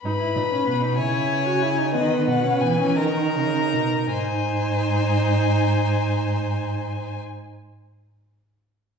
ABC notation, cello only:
X:1
M:6/8
L:1/8
Q:3/8=50
K:G#m
V:1 name="Cello" clef=bass
G,, A,, B,, C,3 | D, B,, E, D, C, B,, | G,,6- | G,,6 |]